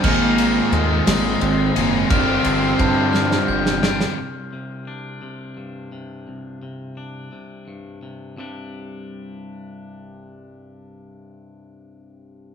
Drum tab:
CC |x-----------|------------|------------|------------|
RD |--x-x-x-x-x-|x-x-x-------|------------|------------|
SD |------o-----|------oo-ooo|------------|------------|
BD |o-----------|o---o-------|------------|------------|

CC |------------|------------|
RD |------------|------------|
SD |------------|------------|
BD |------------|------------|